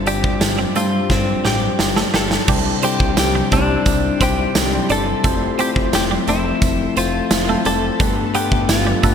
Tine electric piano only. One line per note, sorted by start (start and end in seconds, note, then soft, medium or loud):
0.00 0.72 G2 medium
0.00 0.06 G3 medium
0.00 0.06 D4 medium
0.00 0.06 F4 medium
0.00 0.07 C5 medium
0.06 0.61 G3 medium
0.06 0.61 D4 medium
0.06 0.62 F4 medium
0.06 0.62 C5 medium
0.75 1.85 G3 medium
0.75 1.85 D4 medium
0.75 1.85 F4 medium
0.75 1.86 C5 medium
2.48 3.48 C3 medium
2.48 2.76 G3 medium
2.48 2.76 C4 medium
2.48 2.76 D4 medium
2.48 2.76 E4 medium
2.48 2.76 C5 medium
2.83 3.38 G3 medium
2.83 3.38 C4 medium
2.83 3.38 D4 medium
2.83 3.38 E4 medium
2.83 3.38 C5 medium
3.52 4.07 G3 medium
3.52 4.07 C4 medium
3.52 4.07 D4 medium
3.52 3.59 D#4 medium
3.52 4.07 C5 medium
3.59 4.10 E4 medium
4.20 4.62 G3 medium
4.20 4.62 C4 medium
4.20 4.62 D4 medium
4.20 4.62 E4 medium
4.20 4.62 C5 medium
4.72 5.13 G3 medium
4.72 5.14 C4 medium
4.72 5.14 D4 medium
4.72 5.14 E4 medium
4.72 5.14 C5 medium
5.24 5.52 A3 medium
5.24 5.52 C4 medium
5.24 5.52 E4 medium
5.24 5.52 F4 medium
5.24 5.52 C5 medium
5.58 6.13 A3 medium
5.58 6.13 C4 medium
5.58 6.14 E4 medium
5.58 6.14 F4 medium
5.58 6.14 C5 medium
6.27 6.83 F3 medium
6.27 6.82 A3 medium
6.27 6.82 C4 medium
6.27 6.83 E4 medium
6.27 6.83 C5 medium
6.96 7.37 A3 medium
6.96 7.38 C4 medium
6.96 7.38 F4 medium
6.96 7.38 C5 medium
6.96 7.38 E5 medium
7.48 7.89 A3 medium
7.48 7.89 C4 medium
7.48 7.89 E4 medium
7.48 7.90 F4 medium
7.48 7.90 C5 medium
8.00 9.00 G2 medium
8.00 8.27 A3 medium
8.00 8.28 B3 medium
8.00 8.28 D4 medium
8.00 8.28 G4 medium
8.00 8.28 B4 medium
8.34 8.89 A3 medium
8.34 8.89 B3 medium
8.34 8.90 D4 medium
8.34 8.90 G4 medium
8.34 8.90 B4 medium
9.03 9.15 A3 medium
9.03 9.15 B3 medium
9.03 9.15 D4 medium
9.03 9.15 G4 medium
9.03 9.15 B4 medium